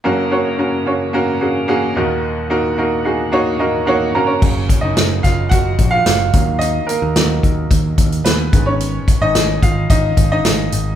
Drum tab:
CC |----------------|----------------|x---------------|----------------|
HH |----------------|----------------|--x-x-x-x-x-x-x-|x-x-x-x-x-xxx-x-|
SD |----------------|----------------|----o-o-----o---|----o-------o---|
BD |----------------|----------------|o-o---o-o-o---o-|------o-o-o---o-|

CC |----------------|
HH |x-x-x-x-x-x-x-x-|
SD |----o-------o---|
BD |--o---o-o-o-----|